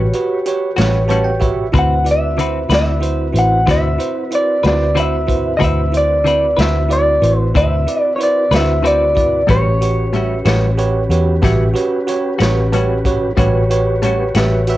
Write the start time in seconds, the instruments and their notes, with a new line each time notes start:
Already playing: fingered electric bass A1, tonewheel organ F#4 G4 B4 C#5
0.13 tine electric piano F#4 G4 B4 C#5, closed hi-hat
0.46 tine electric piano F#4 G4 B4 C#5, closed hi-hat
0.76 fingered electric bass A1, clean electric guitar G3 C#4 F#4, tine electric piano F#4 G4 B4 C#5, snare, closed hi-hat
1.08 clean electric guitar A2 G3 C#4 F#4, tine electric piano F#4 G4 B4 C#5 A5, closed hi-hat
1.24 tine electric piano G5
1.40 tine electric piano F#4 G4 B4 C#5 E5, kick, closed hi-hat
1.72 fingered electric bass D2, clean electric guitar D3 C4 F#4 B4, tonewheel organ C4 E4 F#4 B4, tine electric piano E4 F#4 B4 C5, kick, closed hi-hat
1.79 clean electric guitar F#5
2.04 tine electric piano E4 F#4 B4 D5, closed hi-hat
2.11 clean electric guitar E5
2.37 clean electric guitar D3 C4 F#4 B4, tine electric piano E4 F#4 B4 C5, closed hi-hat
2.69 fingered electric bass D2, clean electric guitar C4 F#4 B4, tine electric piano E4 F#4 B4 D5, snare, closed hi-hat
2.75 clean electric guitar E5
3.01 tine electric piano E4 F#4 B4 C5, closed hi-hat
3.33 fingered electric bass A1, tine electric piano E4 F#4 B4 C5, closed hi-hat
3.39 clean electric guitar F#5
3.66 fingered electric bass D2, clean electric guitar D3 C4 F#4 B4, tine electric piano E4 F#4 B4 C5, kick, snare, closed hi-hat
3.71 clean electric guitar E5
3.98 tine electric piano E4 F#4 B4 C5, closed hi-hat
4.31 tine electric piano E4 F#4 B4 C5, closed hi-hat
4.35 clean electric guitar D5
4.63 fingered electric bass D2, clean electric guitar C4 F#4 B4, tine electric piano E4 F#4 B4 C5, snare, closed hi-hat
4.68 clean electric guitar D5
4.95 clean electric guitar D3 C4 F#4 B4, tine electric piano E4 F#4 B4 C5, closed hi-hat
5.00 clean electric guitar E5
5.27 tine electric piano E4 F#4 B4 C5, kick, closed hi-hat
5.57 fingered electric bass D2, clean electric guitar D3 C4 F#4 B4 D#5, tonewheel organ C4 E4 F#4 B4, tine electric piano E4 F#4 B4 C5, kick
5.61 clean electric guitar E5, closed hi-hat
5.92 tine electric piano E4 F#4 B4 C5, closed hi-hat
5.97 clean electric guitar D5
6.24 clean electric guitar D3 C4 F#4 B4, tine electric piano E4 F#4 B4 D5, closed hi-hat
6.57 fingered electric bass D2, clean electric guitar C4 F#4 B4, tine electric piano E4 F#4 B4 C5, snare, closed hi-hat
6.61 clean electric guitar E5
6.89 tine electric piano E4 F#4 B4 D5, closed hi-hat
6.93 clean electric guitar D5
7.22 fingered electric bass A1, tine electric piano E4 F#4 B4 C5, closed hi-hat
7.38 clean electric guitar C5
7.54 fingered electric bass D2, clean electric guitar D3 C4 F#4 B4 E5, tine electric piano E4 F#4 B4 C5, kick, closed hi-hat
7.87 tine electric piano E4 F#4 B4 D5, closed hi-hat
8.01 clean electric guitar D5
8.16 tine electric piano E4 F#4 B4, clean electric guitar C#5
8.20 tine electric piano C5, clean electric guitar D5, closed hi-hat
8.51 fingered electric bass D2, clean electric guitar C4 F#4 B4, tine electric piano E4 F#4 B4 C5, snare, closed hi-hat
8.56 clean electric guitar E5
8.82 clean electric guitar D3 C4 F#4 B4, tine electric piano E4 F#4 B4 C5, closed hi-hat
8.87 clean electric guitar D5
9.15 tine electric piano E4 F#4 B4 D5, kick, closed hi-hat
9.47 fingered electric bass A1, clean electric guitar A2 G3 C#4 F#4 C#5, tonewheel organ C#4 F#4 G4 B4, tine electric piano F#4 G4 B4 C#5, kick, closed hi-hat
9.81 tine electric piano F#4 G4 B4 C#5, closed hi-hat
10.13 clean electric guitar A2 G3 C#4 F#4, tine electric piano F#4 G4 B4 E5, closed hi-hat
10.45 fingered electric bass A1, clean electric guitar G3 C#4 F#4, tine electric piano F#4 G4 B4 C#5, snare, closed hi-hat
10.74 tine electric piano F#4 G4, clean electric guitar B4
10.78 tine electric piano B4 C#5, closed hi-hat
11.09 fingered electric bass E2, tine electric piano F#4 G4 B4 C#5, closed hi-hat
11.42 fingered electric bass A1, clean electric guitar A2 G3 C#4 F#4, tine electric piano F#4 G4 B4 E5, kick, snare, closed hi-hat
11.74 tine electric piano F#4 G4 B4 C#5, closed hi-hat
12.07 tine electric piano F#4 G4 B4 C#5, closed hi-hat
12.39 fingered electric bass A1, clean electric guitar G3 C#4 F#4, tine electric piano F#4 G4 B4 C#5, snare, closed hi-hat
12.72 clean electric guitar A2 G3 C#4 F#4, tine electric piano F#4 G4 B4 C#5, closed hi-hat
13.05 tine electric piano F#4 G4 B4 C#5, kick, closed hi-hat
13.35 fingered electric bass A1, clean electric guitar A2 G3 C#4 F#4, tonewheel organ F#4 G4 B4 C#5, tine electric piano F#4 G4 B4 C#5, kick, closed hi-hat
13.70 tine electric piano F#4 G4 B4 C#5, closed hi-hat
14.02 clean electric guitar A2 G3 C#4 F#4, tine electric piano F#4 G4 B4 C#5, closed hi-hat
14.34 fingered electric bass A1, clean electric guitar G3 C#4 F#4, tine electric piano F#4 G4 B4 E5, snare, closed hi-hat
14.67 tine electric piano F#4 G4 B4 E5, closed hi-hat